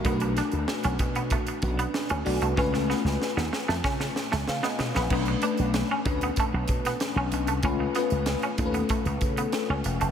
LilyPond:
<<
  \new Staff \with { instrumentName = "FM electric piano" } { \time 4/4 \key b \mixolydian \tempo 4 = 95 << { r1 | r2. <b' eis''>16 <dis'' gis''>8 <b' eis''>16~ | <b' eis''>16 r2. r8. | r1 | } \\ { <a d' fis' ais' b'>4. r4 <a cis' d' fis' b'>4 <a d' fis' d''>8 | <a cis' eis' b'>4. r2 r8 | <a cis' d' b'>8 <a cis' d' b'>4 <a cis' d' b'>4. r4 | <a cis' eis' b'>8 <a cis' eis' b'>4 <a cis' eis' a' b'>4. r4 | } >> }
  \new Staff \with { instrumentName = "Clean electric guitar" } { \time 4/4 \key b \mixolydian b16 r16 d'16 r8 cis'16 r16 b16 a16 r8 b16 r16 cis'16 r16 a16 | cis'16 r16 b16 r8 b16 r16 a16 cis'16 r8 a16 r16 b16 r16 b16 | b16 r16 d'16 r8 cis'16 r16 b16 a16 r8 b16 r16 cis'16 r16 a16 | cis'16 r16 b16 r8 cis'16 r16 b16 a16 r8 b16 r16 cis'16 r16 a16 | }
  \new Staff \with { instrumentName = "Slap bass" } { \clef bass \time 4/4 \key b \mixolydian b,,8. d,16 r16 b,,16 b,8. r16 b,,8 r16 d,16 b,,16 bis,,16 | cis,8. cis,16 r16 dis,16 r16 eis,16 cis8 r16 cis,16 cis16 r16 b,16 ais,,16 | b,,8 r16 b,,8 r16 d,8 r16 b,,16 b,8 r16 b,,16 b,,16 bis,,16 | cis,8 r16 cis,8 r16 dis,8 r16 cis,16 cis8 r16 cis,16 e,,16 eis,,16 | }
  \new DrumStaff \with { instrumentName = "Drums" } \drummode { \time 4/4 <hh bd>16 hh16 <hh sn>16 hh16 sn16 hh16 <hh bd>16 hh16 <hh bd>16 hh16 <hh bd>16 hh16 sn16 hh16 hho16 hh16 | <bd sn>16 sn16 sn16 sn16 sn16 sn16 sn16 sn16 <bd sn>16 sn16 sn16 sn16 sn16 sn16 sn16 sn16 | <cymc bd>16 hh16 hh16 hh16 <hh sn>8 <hh bd>16 hh16 <hh bd>8 <hh bd>16 <hh sn>16 <hh sn>8 hh16 hh16 | <hh bd>8 <hh sn>16 hh16 <hh sn>16 hh16 <hh bd>16 hh16 <hh bd>16 hh16 <hh bd>16 hh16 <hh sn>8 hh16 hh16 | }
>>